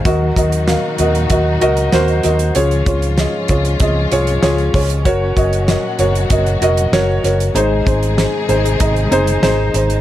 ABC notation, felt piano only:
X:1
M:4/4
L:1/8
Q:1/4=96
K:Db
V:1 name="Felt piano"
[GBe] [GBe] [GBf] [GBe] [GBe] [GBe] [GBc] [GBe] | [FAd] [FAd] [FAe] [FAd] [FAe] [FAd] [FAd] [FAd] | [GBd] [GBe] [GBe] [GBd] [GBe] [GBe] [GBd] [GBd] | [EAc] [EAc] [EAc] [EAc] [EAe] [EAc] [EAc] [EAc] |]
V:2 name="Felt piano" clef=bass
E,3 z4 z | D,3 z4 z | z8 | A,,3 z4 z |]